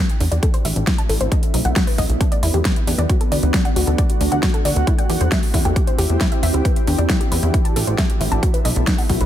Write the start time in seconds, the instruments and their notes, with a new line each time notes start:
0.09 closed hi-hat
0.20 analog synth bass E2, synth pluck D4, open hi-hat
0.31 analog synth bass E2, synth pluck D5, closed hi-hat
0.43 synth pluck A4, kick, closed hi-hat
0.54 synth pluck C5, closed hi-hat
0.65 analog synth bass A1, synth pluck E5, open hi-hat
0.76 analog synth bass A1, closed hi-hat
0.87 synth pluck E4, kick, snare, closed hi-hat
0.98 synth pluck A5, closed hi-hat
1.09 analog synth bass A1, synth pluck A4, open hi-hat
1.21 analog synth bass A1, synth pluck C5, closed hi-hat
1.32 ambient pad B3, synth pluck D#5, kick, closed hi-hat
1.43 closed hi-hat
1.54 analog synth bass B1, synth pluck D#4, open hi-hat
1.65 analog synth bass B1, synth pluck F#5, closed hi-hat
1.76 synth pluck F#4, kick, snare, closed hi-hat
1.87 synth pluck B4, open hi-hat
1.98 analog synth bass B1, synth pluck D#5, kick, open hi-hat
2.09 analog synth bass B1, closed hi-hat
2.21 ambient pad D4, synth pluck D4, kick, closed hi-hat
2.32 synth pluck D5, closed hi-hat
2.43 analog synth bass E2, synth pluck E4, open hi-hat
2.54 analog synth bass E2, synth pluck G4, closed hi-hat
2.65 synth pluck B4, kick, snare, closed hi-hat
2.76 closed hi-hat
2.87 analog synth bass E2, synth pluck D4, open hi-hat
2.98 analog synth bass E2, synth pluck D5, closed hi-hat
3.10 ambient pad A3 F#4, synth pluck F#4, kick, closed hi-hat
3.21 synth pluck A4, closed hi-hat
3.32 analog synth bass D2, synth pluck D5, open hi-hat
3.43 analog synth bass D2, closed hi-hat
3.54 synth pluck D4, kick, snare, closed hi-hat
3.65 synth pluck F#5, closed hi-hat
3.76 analog synth bass D2, synth pluck F#4, open hi-hat
3.87 analog synth bass D2, synth pluck A4, closed hi-hat
3.98 synth pluck D5, kick, closed hi-hat
4.10 closed hi-hat
4.21 analog synth bass D2, synth pluck D4, open hi-hat
4.32 analog synth bass D2, synth pluck F#5, closed hi-hat
4.43 synth pluck F#4, kick, snare, closed hi-hat
4.54 synth pluck A4, closed hi-hat
4.65 analog synth bass D2, synth pluck D5, open hi-hat
4.76 analog synth bass D2, closed hi-hat
4.87 ambient pad C4 E4 G4, synth pluck E4, kick, closed hi-hat
4.98 synth pluck G5, closed hi-hat
5.10 analog synth bass E2, synth pluck G4, open hi-hat
5.21 analog synth bass E2, synth pluck C5, closed hi-hat
5.32 synth pluck E5, kick, snare, closed hi-hat
5.43 open hi-hat
5.54 analog synth bass E2, synth pluck E4, kick, open hi-hat
5.65 analog synth bass E2, synth pluck G5, closed hi-hat
5.76 synth pluck G4, kick, closed hi-hat
5.87 synth pluck C5, closed hi-hat
5.98 analog synth bass E2, synth pluck G4, open hi-hat
6.10 analog synth bass E2, closed hi-hat
6.21 synth pluck E4, kick, snare, closed hi-hat
6.32 synth pluck E5, closed hi-hat
6.43 analog synth bass E2, synth pluck E5, open hi-hat
6.54 analog synth bass D2, synth pluck E4, closed hi-hat
6.65 synth pluck B4, kick, closed hi-hat
6.76 closed hi-hat
6.87 analog synth bass E2, synth pluck D4, open hi-hat
6.98 analog synth bass E2, synth pluck D5, closed hi-hat
7.09 synth pluck E4, kick, snare, closed hi-hat
7.20 synth pluck G4, closed hi-hat
7.32 analog synth bass E2, synth pluck B4, open hi-hat
7.43 analog synth bass E2, closed hi-hat
7.54 synth pluck E4, kick, closed hi-hat
7.65 synth pluck A5, closed hi-hat
7.76 analog synth bass A1, synth pluck A4, open hi-hat
7.87 analog synth bass A1, synth pluck C5, closed hi-hat
7.98 synth pluck E5, kick, snare, closed hi-hat
8.10 closed hi-hat
8.20 analog synth bass A1, synth pluck E4, open hi-hat
8.32 analog synth bass A1, synth pluck A5, closed hi-hat
8.43 ambient pad B3, synth pluck F#4, kick, closed hi-hat
8.54 synth pluck B4, closed hi-hat
8.65 analog synth bass B1, synth pluck D#5, open hi-hat
8.76 analog synth bass B1, closed hi-hat
8.87 synth pluck D#4, kick, snare, closed hi-hat
8.98 synth pluck F#5, open hi-hat
9.09 analog synth bass B1, synth pluck F#4, kick, open hi-hat
9.21 analog synth bass B1, synth pluck B4, closed hi-hat